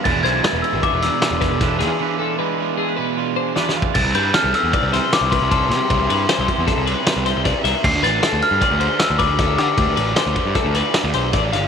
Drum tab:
CC |x-----------------------------|------------------------------|x-----------------------------|------------------------------|
RD |---x--x--x--x--x--x--x--x--x--|------------------------------|---x--x--x--x--x--x--x--x--x--|x--x--x--x--x--x--x--x--x--x--|
SD |---o--o--------o--o--o--o--o--|------------------------o-o---|------o--o-----o--o--------o--|------o-----o-----o--o--o--o--|
BD |o-----------o--------o--o-----|----------------------------o-|o-----------o--------o--o-----|o--------o--o-----------o-----|

CC |x-----------------------------|------------------------------|
RD |---x--x--x--x--x--x--x--x--x--|x--x--x--x--x--x--x--x--x--x--|
SD |---o--o-----o-----o-----o--o--|------o-----o--o--o--o--o--o--|
BD |o-----------o--------o--o-----|o--------o--o-----------o-----|